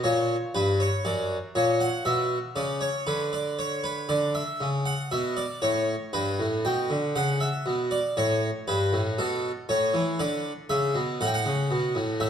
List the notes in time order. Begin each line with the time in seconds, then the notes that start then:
0.04 A#2 C#5
0.55 G2 B4
0.80 C#5
1.05 F#2 D5
1.55 A#2 C#5
1.80 F#5
2.05 B2 E5
2.56 C#3 D5
2.81 C#5
3.07 D3 B4
3.33 D5
3.59 C#5
3.84 B4
4.09 D3 D5
4.35 E5
4.61 C#3
4.86 F#5
5.11 B2 E5
5.37 D5
5.62 A2 C#5
6.13 G2 B4
6.39 A2
6.65 B2 G5
6.90 D3
7.15 C#3 F#5
7.40 E5
7.66 B2
7.91 D5
8.17 A2 C#5
8.68 G2 B4
8.93 A2
9.18 B2 A4
9.69 A2 C#5
9.94 E3
10.19 D3 D5
10.69 C#3 E5
10.95 B2
11.21 A2 F#5
11.27 G5
11.34 F#5
11.46 C#3
11.71 B2
11.95 A2
12.20 A2 E5